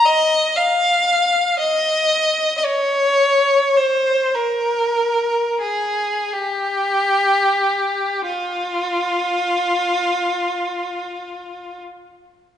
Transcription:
0.06 0.55 D#5 medium
0.57 1.59 F5 medium
1.59 2.55 D#5 medium
2.58 2.64 D#5 soft
2.65 3.76 C#5 medium
3.76 4.34 C5 medium
4.35 5.60 A#4 medium
5.61 6.31 G#4 medium
6.33 8.25 G4 medium
8.25 11.80 F4 medium

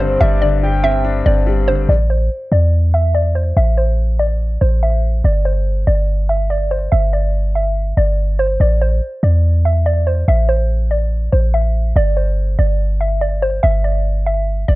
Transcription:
0.00 0.17 G1 loud
0.00 0.21 G2 loud
0.00 0.42 D3 medium
0.00 0.63 G3 medium
0.00 0.84 C4 loud
0.00 0.42 D4 medium
0.00 0.16 C5 medium
0.00 0.20 C5 medium
0.21 1.22 G1 loud
0.21 1.26 G2 medium
0.21 0.61 D5 loud
0.21 0.37 E5 loud
0.42 1.47 D3 medium
0.42 0.81 D5 medium
0.63 1.45 G3 medium
0.63 1.03 G5 medium
0.84 1.25 C4 medium
0.84 1.23 E5 medium
1.04 1.89 D4 medium
1.26 1.86 G1 loud
1.26 1.89 C4 medium
1.26 1.65 D5 medium
1.47 1.89 G3 medium
1.68 1.89 D3 medium
1.68 1.84 C5 medium
1.89 2.29 A1 loud
1.89 2.06 D5 loud
2.10 2.49 C5 medium
2.52 3.53 E2 loud
2.52 2.91 D5 medium
2.94 3.10 E5 medium
3.15 3.31 D5 medium
3.35 3.52 C5 medium
3.57 4.58 A1 loud
3.57 3.73 E5 loud
3.77 4.17 C5 medium
4.19 4.59 D5 medium
4.61 5.22 A1 loud
4.61 4.78 C5 medium
4.83 5.22 E5 medium
5.24 5.85 G1 loud
5.24 5.41 D5 medium
5.45 5.85 C5 medium
5.87 6.88 G1 loud
5.87 6.27 D5 medium
6.29 6.46 E5 medium
6.50 6.67 D5 medium
6.71 6.88 C5 medium
6.92 7.93 G1 loud
6.92 7.09 E5 loud
7.13 7.53 D5 medium
7.55 7.95 E5 medium
7.97 8.58 G1 loud
7.97 8.37 D5 medium
8.39 8.56 C5 medium
8.60 9.00 A1 loud
8.60 8.77 D5 loud
8.81 9.21 C5 medium
9.23 10.24 E2 loud
9.23 9.63 D5 medium
9.65 9.82 E5 medium
9.86 10.03 D5 medium
10.07 10.24 C5 medium
10.28 11.29 A1 loud
10.28 10.45 E5 loud
10.49 10.88 C5 medium
10.91 11.30 D5 medium
11.32 11.93 A1 loud
11.32 11.49 C5 medium
11.54 11.93 E5 medium
11.96 12.56 G1 loud
11.96 12.13 D5 medium
12.17 12.56 C5 medium
12.59 13.60 G1 loud
12.59 12.98 D5 medium
13.01 13.17 E5 medium
13.21 13.38 D5 medium
13.42 13.59 C5 medium
13.63 14.65 G1 loud
13.63 13.80 E5 loud
13.84 14.24 D5 medium
14.26 14.66 E5 medium
14.68 14.75 G1 loud
14.68 14.75 D5 medium

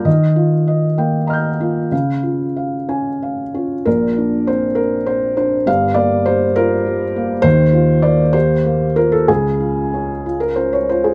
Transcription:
0.05 1.88 D#3 medium
0.05 0.53 D#5 medium
0.36 0.84 F4 medium
0.68 1.16 D#5 medium
0.98 1.48 A#3 soft
0.98 1.48 G5 medium
1.27 1.79 D#5 soft
1.27 1.88 A#5 soft
1.27 1.89 F6 soft
1.33 1.91 G6 soft
1.60 1.92 A#3 soft
1.60 1.92 F4 soft
1.91 3.82 C#3 medium
1.91 2.44 F5 soft
2.23 2.75 F4 soft
2.57 3.08 F5 soft
2.89 3.41 C#4 soft
2.89 3.41 G#5 soft
3.23 3.74 F5 soft
3.54 3.86 C#4 soft
3.54 3.86 F4 soft
3.85 5.64 A#1 medium
3.85 5.64 A#2 medium
3.85 4.47 A#4 medium
4.18 4.66 D4 soft
4.47 4.96 C4 soft
4.47 4.77 C5 medium
4.75 5.07 A#4 medium
5.06 5.55 C4 soft
5.06 5.35 C5 medium
5.37 5.67 D4 soft
5.37 5.67 C5 medium
5.66 7.40 G1 medium
5.66 7.40 G2 medium
5.66 5.97 F5 loud
5.94 6.43 A#3 medium
5.94 6.26 D5 medium
6.26 6.74 G3 soft
6.26 6.56 C5 medium
6.56 7.03 F4 medium
6.56 7.44 A#4 loud
6.87 7.33 G3 medium
7.16 7.45 A#3 medium
7.42 9.23 D#2 medium
7.42 9.24 D#3 medium
7.42 8.03 C5 loud
7.73 8.21 F4 medium
8.02 8.53 A#3 medium
8.02 8.33 D5 medium
8.33 8.84 G4 medium
8.33 8.96 C5 loud
8.65 9.16 A#3 medium
8.96 9.29 F4 medium
8.96 9.12 A#4 medium
9.12 9.28 A4 medium
9.28 11.14 C#2 medium
9.28 11.14 C#3 medium
9.28 10.40 G#4 loud
9.60 10.11 F4 soft
9.94 10.44 C#4 medium
10.26 10.76 F4 soft
10.40 10.56 A#4 medium
10.56 11.07 C#4 soft
10.56 10.72 C5 medium
10.73 10.88 C#5 medium
10.89 11.14 F4 soft
10.89 11.04 C5 medium
11.04 11.14 G#4 medium

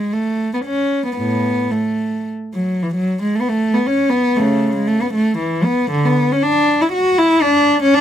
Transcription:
0.00 0.14 G#3 medium
0.13 0.53 A3 medium
0.54 0.59 B3 soft
0.66 1.05 C#4 medium
1.05 1.16 B3 soft
1.17 1.69 A2 soft
1.17 1.71 B3 medium
1.71 2.27 A3 soft
2.54 2.80 F#3 medium
2.83 2.95 E3 medium
2.96 3.20 F#3 medium
3.21 3.33 G#3 medium
3.35 3.41 A3 medium
3.41 3.47 B3 medium
3.49 3.72 A3 medium
3.74 3.86 B3 medium
3.87 4.11 C#4 medium
4.10 4.36 B3 medium
4.37 4.72 C#3 medium
4.37 4.75 A3 medium
4.75 4.87 G#3 medium
4.88 5.00 A3 medium
5.02 5.14 B3 medium
5.14 5.39 A3 medium
5.39 5.64 E3 medium
5.64 5.91 B3 medium
5.91 6.04 D3 medium
6.05 6.31 B3 medium
6.32 6.44 C#4 medium
6.43 6.81 D4 medium
6.82 6.94 E4 medium
6.93 7.18 F#4 medium
7.18 7.44 E4 medium
7.42 7.81 D4 medium
7.82 7.94 C#4 medium
7.95 8.01 D4 loud

